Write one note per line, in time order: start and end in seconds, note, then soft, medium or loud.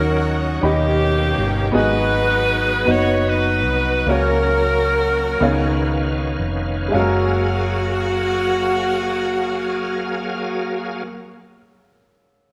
0.00 0.58 D#2 medium
0.00 0.58 D#3 medium
0.00 0.62 F#3 medium
0.00 0.60 C#4 medium
0.00 0.19 D#4 medium
0.00 0.62 D#4 medium
0.00 0.23 F#4 medium
0.00 0.59 F#4 medium
0.00 0.62 F#4 medium
0.00 0.36 A#4 medium
0.00 0.20 C#5 medium
0.00 0.21 F5 medium
0.61 1.33 D#2 medium
0.61 1.73 B2 soft
0.61 1.73 D#3 medium
0.61 1.70 D#3 medium
0.61 1.71 A#3 medium
0.61 1.73 C#4 soft
0.61 1.31 C#4 medium
0.61 1.73 G4 medium
0.61 1.31 G4 medium
0.61 1.71 G4 loud
0.61 1.32 D#5 medium
0.61 1.32 B5 medium
0.66 1.71 C#4 medium
1.38 1.71 G1 medium
1.72 2.83 G#1 medium
1.72 2.83 G#2 medium
1.72 2.86 F#3 medium
1.72 2.42 B3 medium
1.72 2.86 B3 medium
1.72 2.86 D#4 medium
1.72 2.43 F#4 medium
1.72 2.43 G#4 medium
1.72 2.87 G#4 medium
1.72 2.44 D#5 medium
1.77 2.85 D#4 medium
1.77 2.85 F#4 medium
1.77 2.89 B4 loud
2.85 3.66 F#1 medium
2.85 4.07 F#3 soft
2.85 3.60 B3 medium
2.85 4.07 B3 medium
2.85 3.60 D#4 medium
2.85 4.07 D#4 soft
2.85 3.60 F#4 medium
2.85 4.08 B4 medium
2.85 3.61 D#5 medium
2.91 3.28 F#4 medium
2.91 3.28 C#5 loud
3.29 4.05 D#4 medium
3.29 4.05 F#4 medium
3.29 4.09 B4 medium
3.66 4.04 C2 medium
4.06 5.36 C#2 medium
4.06 5.37 C#3 medium
4.06 5.41 F#3 medium
4.06 4.88 A#3 medium
4.06 5.41 A#3 medium
4.06 4.88 C#4 medium
4.06 5.41 C#4 medium
4.06 6.37 C#4 medium
4.06 4.89 F#4 medium
4.06 6.37 F#4 medium
4.06 5.41 A#4 medium
4.06 6.40 A#4 loud
4.11 4.89 C#5 medium
5.40 6.36 C#2 medium
5.40 6.90 C#3 medium
5.40 6.94 D#3 medium
5.40 6.32 B3 medium
5.40 6.94 B3 medium
5.40 6.94 C#4 medium
5.40 6.32 D#4 medium
5.40 6.33 C#5 medium
5.40 6.93 F5 medium
5.40 6.33 F5 medium
6.39 6.89 F1 medium
6.88 11.15 G#3 medium
6.88 11.18 F5 medium
6.94 11.20 F#1 medium
6.94 11.20 F#2 medium
6.94 11.03 F#3 medium
6.94 11.03 A#3 medium
6.94 11.04 F#4 medium
6.94 11.22 F#4 medium
6.94 11.03 G#4 medium
6.94 11.03 F5 medium
6.99 11.26 A#4 medium